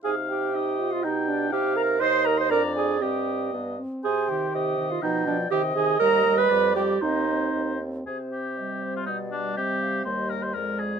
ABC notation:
X:1
M:2/4
L:1/16
Q:1/4=120
K:Cm
V:1 name="Flute"
a2 g4- g f | e2 d2 g2 b2 | c'2 b c' b2 a2 | g4 z4 |
a2 g4- g f | e2 d2 g2 a2 | b3 =b3 g2 | e6 z2 |
c4 e2 c2 | d4 e2 f2 | e4 d4 |]
V:2 name="Oboe"
f4 e4 | g4 f4 | e4 d4 | e6 z2 |
c4 e4 | g4 e4- | e4 d4 | c6 z2 |
A2 G4- G F | E2 D2 G4 | c2 B c B2 A2 |]
V:3 name="Clarinet"
A2 G4- G F | E2 D2 G2 B2 | c2 B c B2 A2 | G4 z4 |
A2 G4- G F | E2 D2 G2 A2 | B3 =B3 G2 | E6 z2 |
z4 G,4- | G,4 C4 | B,4 A,4 |]
V:4 name="French horn"
E4 E2 F2 | G4 E4 | E4 D4 | C4 =B,2 C2 |
z2 E,4 E,2 | F,2 F,2 E,2 E,2 | G,2 G,2 G,2 G,2 | C2 C4 C2 |
C8 | G,4 G,4 | G,4 A,4 |]
V:5 name="Bassoon" clef=bass
C,8 | =B,,4 C,4 | E,,4 F,,4 | G,,4 G,,2 z2 |
C,4 C,4 | =B,,4 C,4 | E,,4 F,,4 | E,,4 E,,4 |
C,8 | =B,,4 C,4 | E,,4 F,,4 |]